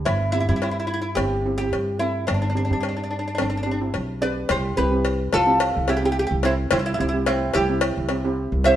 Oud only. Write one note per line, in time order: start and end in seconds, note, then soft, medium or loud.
0.05 0.31 E4 medium
0.32 0.39 E4 medium
0.40 0.48 E4 medium
0.49 0.55 E4 medium
0.56 0.62 E4 medium
0.63 0.70 E4 medium
0.71 0.78 E4 soft
0.80 0.86 E4 medium
0.87 0.92 E4 medium
0.94 1.00 E4 medium
1.02 1.09 E4 medium
1.15 1.57 G4 medium
1.58 1.99 G4 medium
1.99 2.26 E4 medium
2.27 2.33 D4 medium
2.34 2.41 D4 soft
2.42 2.48 D4 medium
2.50 2.56 D4 soft
2.57 2.64 D4 medium
2.65 2.72 D4 soft
2.73 2.79 D4 soft
2.81 2.88 D4 soft
2.89 2.95 D4 soft
2.97 3.02 D4 soft
3.04 3.09 D4 soft
3.11 3.18 D4 soft
3.19 3.26 D4 medium
3.28 3.34 D4 soft
3.35 3.41 D4 medium
3.42 3.49 D4 soft
3.50 3.56 D4 medium
3.57 3.62 D4 soft
3.63 3.70 D4 medium
3.71 3.79 D4 soft
4.22 4.48 B4 medium
4.22 4.48 D5 medium
4.51 4.77 G4 medium
4.51 4.76 C5 medium
4.77 5.30 G4 medium
4.77 5.33 B4 medium
5.34 5.85 F4 medium
5.34 5.89 A4 loud
5.89 5.97 E4 medium
5.89 5.95 G4 medium
5.97 6.04 G4 medium
6.05 6.11 G4 medium
6.12 6.18 G4 medium
6.19 6.26 G4 medium
6.27 6.34 G4 medium
6.45 6.53 C4 medium
6.45 6.52 E4 medium
6.72 6.80 C4 medium
6.72 6.78 E4 medium
6.79 6.85 E4 medium
6.86 6.93 E4 medium
6.94 6.99 E4 medium
7.01 7.07 E4 medium
7.09 7.16 E4 medium
7.27 7.53 C4 medium
7.27 7.54 E4 medium
7.55 8.61 E4 medium
7.55 8.65 G4 loud
8.65 8.76 C5 medium
8.65 8.76 E5 loud